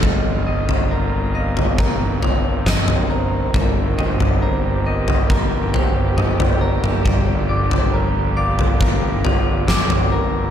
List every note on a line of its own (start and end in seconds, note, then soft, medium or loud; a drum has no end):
0.02 3.50 G1 medium
0.02 7.01 D#3 medium
0.02 2.23 G3 medium
0.02 10.50 A#3 soft
0.02 5.25 C4 medium
0.02 1.76 F4 medium
0.02 0.91 D#5 medium
0.02 kick medium
0.02 floor tom medium
0.47 1.34 D#5 medium
0.69 floor tom medium
0.91 1.79 A#4 medium
1.35 2.66 D#5 medium
1.35 2.23 F5 medium
1.57 floor tom medium
1.78 3.52 D#4 medium
1.78 3.10 A#4 medium
1.78 kick medium
2.23 3.54 F4 medium
2.23 floor tom medium
2.66 3.54 D#5 medium
2.66 kick medium
2.66 snare medium
2.66 mid tom medium
2.88 floor tom medium
3.10 4.42 A#4 medium
3.10 3.54 C5 medium
3.53 7.01 G1 medium
3.53 5.74 G3 medium
3.53 10.50 G4 medium
3.53 3.98 A#4 medium
3.53 kick medium
3.53 floor tom medium
3.98 4.41 C5 medium
3.98 4.85 D#5 medium
3.98 mid tom medium
4.20 floor tom medium
4.42 5.29 A#4 medium
4.42 4.86 C5 medium
4.86 5.74 A#4 medium
4.86 6.16 D#5 medium
5.08 floor tom medium
5.29 10.50 D3 medium
5.29 6.60 A#4 medium
5.29 kick medium
5.74 7.05 G4 medium
5.74 6.62 C5 medium
5.74 floor tom medium
5.74 mid tom medium
6.17 7.05 D#5 medium
6.17 mid tom medium
6.40 floor tom medium
6.61 7.05 A#4 medium
6.61 7.05 D5 medium
6.84 mid tom medium
7.04 10.50 G1 medium
7.04 10.50 F3 medium
7.04 9.24 G3 medium
7.04 7.94 D5 medium
7.04 kick medium
7.04 floor tom medium
7.49 8.36 D5 medium
7.71 floor tom medium
7.94 8.79 A#4 medium
8.37 9.67 D5 medium
8.37 9.25 F5 medium
8.59 floor tom medium
8.81 10.11 A#4 medium
8.81 kick loud
9.24 10.50 F4 medium
9.24 10.13 D5 medium
9.24 floor tom medium
9.68 10.50 D5 medium
9.68 kick medium
9.68 snare medium
9.68 mid tom medium
9.90 floor tom medium
10.12 10.50 A#4 medium